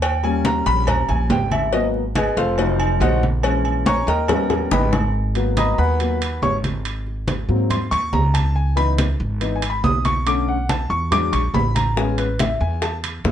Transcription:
Already playing: D#2
0.02 G5, cowbell, high conga, low agogo
0.23 G3 A#3 C#4 G#5, high conga, low agogo
0.45 A#5, cowbell, high conga, low timbale
0.66 A#1 B5, cowbell, high conga
0.87 A#5, cowbell, high conga, low conga, low agogo
1.09 A#1 G#5, high conga, low conga, low agogo
1.30 G#1 G5, cowbell, high conga, low timbale
1.51 E5, high conga, low agogo
1.72 F#3 A#3 B3 D#5, cowbell
1.94 high conga
2.15 G#4 B4 D#5 G#5, cowbell, high conga, low timbale, low agogo
2.37 F1 F4 A4 C5 F5, cowbell, high conga
2.58 F#3 A3 D#4, cowbell, high conga, low agogo
2.80 high conga, low agogo
3.00 A#1 F#4 C5 D#5 F#5, cowbell, high conga, low timbale, low agogo
3.23 high conga
3.43 E3 G#3 C#4, cowbell, high conga, low agogo
3.65 high conga, low agogo
3.86 C#5 G#5 A#5 C#6, cowbell, high conga, low timbale
4.07 D#2 A#4 D#5 G5 A#5, cowbell, high conga
4.28 G3 B3 C#4, cowbell, high bongo, high conga, low conga, low agogo
4.50 high bongo, high conga, low conga, low agogo
4.71 G#1 B4 D#5 G5 B5, cowbell, low bongo, high conga, low timbale
4.93 low bongo, high conga, low agogo
5.15 high conga
5.35 F#3 A#3 B3, high conga, high timbale
5.57 D#5 A#5 B5 D#6, high conga, high timbale, low timbale
5.74 A#5
5.78 D#2 B4 F#5 G#5 B5, high conga
6.00 F#3 A#3 B3, high conga, high timbale
6.21 high conga, high timbale
6.42 G#1 C#5 C#6, high conga, low timbale
6.64 high conga, high timbale
6.85 high conga, high timbale
7.07 high conga
7.28 high conga, high timbale, low timbale
7.49 G#2 F#3 A#3 C4, high conga
7.70 C6, high conga, low conga, high timbale
7.91 D#2 C#6, high conga, low conga, high timbale
8.13 C#2 A#5, high conga, low timbale
8.34 A5, high conga, high timbale
8.56 G#5, high conga
8.76 E3 B3 D#4 B5, high conga, high timbale
8.98 high conga, high timbale, low timbale
9.20 G#1, high conga
9.41 E3 B3 D#4, high conga, high timbale
9.56 G#5
9.62 high conga, high timbale
9.70 B5
9.84 B1 D#6, high conga, low timbale
10.05 C#6, high conga, high timbale
10.26 D3 A3 C#4 D6, high conga, high timbale
10.48 F#5, high conga
10.69 A5, high conga, high timbale, low timbale
10.90 E2 C#6, high conga
11.11 F#3 G#3 D4 D6, high conga, low conga, high timbale
11.33 A#1 C#6, high conga, high timbale
11.54 A1 B5, high conga, low timbale
11.75 A#5, high conga, high timbale
11.96 G#3 B3 C#4 G#5, high bongo, high conga
12.18 B4, high conga, high timbale
12.39 E5, high bongo, high conga, high timbale, low timbale
12.61 E2 G#5, high conga
12.82 A5, high bongo, high conga, high timbale
13.04 high conga, high timbale
13.24 F#2, high bongo, low bongo, high conga, low timbale

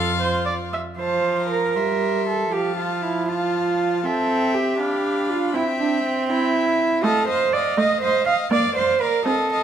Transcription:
Already playing: F2 F4 A4 F5
0.20 C5
0.46 D5
0.73 E5
0.99 F3 C5 F5 A5
1.39 A#5
1.50 A#4
1.76 G3 E5 C6
2.28 A4
2.52 F3 G4 F5 A5
2.77 F4
3.02 E4
3.28 F4 F5 A5
4.04 C4 A4 E5 G5
4.54 G4
4.79 D4 F5 B5
5.30 F4
5.54 C4 E4 E5 G5
5.79 D4
6.04 C4
6.29 E4 E5 G5
7.04 A3 A4 D#5 F5
7.28 C5 D#5 F5
7.53 D5 D#5 F5
7.77 A3 D#5 F5
8.01 C5 D#5 F5
8.26 D#5 F5
8.51 A#3 D5 F5
8.76 C5 D5 F5
9.01 A#4 D5 F5
9.25 C4 A4 D#5 F5
9.52 D#5 F5

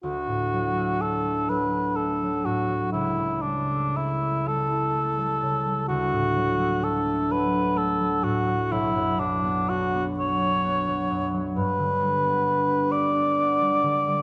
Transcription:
0.03 D2 F#4
0.27 A2
0.53 F#3
0.77 A3
1.00 D4 A4
1.25 A3
1.49 F#3 B4
1.73 D4
1.97 A3 A4
2.23 F#3
2.45 A2 F#4
2.70 F#3
2.92 C#2 E4
3.18 C#3
3.42 G3 D4
3.71 A3
3.96 E4
4.22 A3
4.46 G3 A4
4.71 E4
4.94 A3
5.19 G3
5.43 C#3
5.66 G3
5.88 D2 F#4
6.13 A2
6.36 F#3
6.59 A3
6.82 D4 A4
7.06 A3
7.29 F#3 B4
7.53 D4
7.77 A3 A4
8.01 F#3
8.23 A2 F#4
8.47 F#3
8.72 B1 E4
8.96 F#2
9.19 F#3 D4
9.43 B3
9.68 D4 F#4
9.94 B3
10.18 F#3 C#5
10.42 D4
10.64 B3
10.88 F#3
11.10 F#2
11.34 F#3
11.56 G2 B4
11.79 D3
12.00 G3
12.24 B3
12.46 D4
12.68 G4
12.92 B4 D5
13.15 D4
13.39 B3
13.61 G3
13.83 D3
14.08 G3

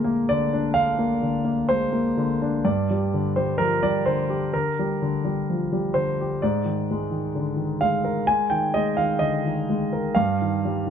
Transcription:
Already playing: A#2 D3 G#3 A#3 A#4
0.04 A#3
0.29 D3 D5
0.53 D4
0.74 D3 F5
0.98 A#3
1.23 D3
1.45 A#3
1.69 G#3 C5
1.92 A#3
2.17 D3
2.42 D4
2.65 G2 D5
2.91 G3
3.14 D3
3.36 G3 C5
3.58 F3 A#4
3.83 G3 D5
4.06 D3 C5
4.30 G4
4.54 D3 A#4
4.79 G3
5.02 D3
5.25 G3
5.50 F3
5.72 G3
5.94 D3 C5
6.21 G4
6.42 G#2 D5
6.65 D#3
6.91 G#3
7.11 D#3
7.35 D3
7.56 D#3
7.81 G#3 F5
8.04 A#4
8.27 G#3 G#5
8.50 D#3 G5
8.74 G#3 D#5
8.97 D#3 F5
9.19 D3 D#5
9.45 D#3
9.69 G#3
9.93 A#4
10.15 G2 F5
10.42 D#3
10.65 G3
10.87 D#3

